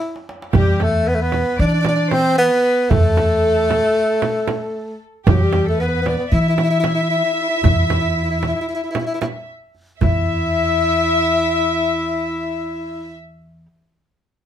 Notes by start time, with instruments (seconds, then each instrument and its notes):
Already playing: tenor saxophone E4
0.02 darbuka tek
0.16 darbuka ka
0.29 darbuka tek
0.42 darbuka ka
0.52 upright bass E2, tenor saxophone G3, violin section G4, clarinet G4, frame drum, darbuka dum
0.80 tenor saxophone A3, violin section A4, clarinet A4, darbuka tek, frame drum
1.05 tenor saxophone B3, violin section B4, clarinet B4
1.15 tenor saxophone A3
1.19 tenor saxophone B3, violin section B4, clarinet B4
1.32 darbuka tek, frame drum
1.57 upright bass E3, tenor saxophone D4, violin section D5, clarinet D5
1.67 tenor saxophone D4
1.74 tenor saxophone D4
1.81 tenor saxophone D4, clarinet D5, frame drum
1.86 tenor saxophone D4, darbuka tek
1.96 tenor saxophone D4
2.10 tenor saxophone C4, violin section C5, clarinet C5, darbuka tek, frame drum
2.35 tenor saxophone B3, violin section B4, clarinet B4
2.63 clarinet B4
2.90 upright bass E2, tenor saxophone A3, violin section A4, clarinet A4, darbuka dum, frame drum
3.17 darbuka tek, frame drum
3.69 darbuka tek, frame drum
4.22 darbuka tek, frame drum
4.48 darbuka tek, frame drum
5.25 upright bass E2, tenor saxophone G3, violin section G4, clarinet G4, frame drum, darbuka dum
5.33 tenor saxophone F#3
5.40 tenor saxophone G3, violin section G4
5.53 darbuka tek, frame drum
5.64 violin section A4, clarinet A4
5.69 tenor saxophone A3
5.78 tenor saxophone B3, violin section B4, clarinet B4
5.88 tenor saxophone B3
5.95 tenor saxophone B3
6.02 tenor saxophone B3, darbuka tek
6.06 tenor saxophone B3, clarinet D5, frame drum
6.18 tenor saxophone B3
6.32 upright bass E3, tenor saxophone E4, violin section E5, clarinet E5
6.40 tenor saxophone E4
6.49 tenor saxophone E4
6.56 tenor saxophone E4, darbuka tek, frame drum
6.64 tenor saxophone E4
6.70 tenor saxophone E4
6.80 tenor saxophone E4, frame drum
6.84 tenor saxophone E4, darbuka tek
6.95 tenor saxophone E4
7.03 tenor saxophone E4
7.10 tenor saxophone E4
7.18 tenor saxophone E4
7.25 tenor saxophone E4
7.34 tenor saxophone E4
7.42 tenor saxophone E4
7.49 tenor saxophone E4
7.57 tenor saxophone E4
7.63 upright bass E2, tenor saxophone E4, darbuka dum, frame drum
7.70 tenor saxophone E4
7.78 tenor saxophone E4
7.87 tenor saxophone E4, darbuka tek, frame drum
7.94 tenor saxophone E4
8.01 tenor saxophone E4
8.09 tenor saxophone E4
8.16 tenor saxophone E4
8.24 tenor saxophone E4
8.30 tenor saxophone E4
8.39 tenor saxophone E4, darbuka tek, frame drum
8.48 tenor saxophone E4
8.55 tenor saxophone E4
8.61 tenor saxophone E4
8.69 tenor saxophone E4, darbuka ka
8.75 tenor saxophone E4
8.84 tenor saxophone E4
8.91 tenor saxophone E4
8.95 darbuka tek, frame drum
9.00 tenor saxophone E4
9.06 tenor saxophone E4
9.14 tenor saxophone E4
9.21 tenor saxophone E4, darbuka tek, frame drum
9.75 darbuka ka
10.00 upright bass E2, tenor saxophone E4, violin section E5, clarinet E5, darbuka dum, frame drum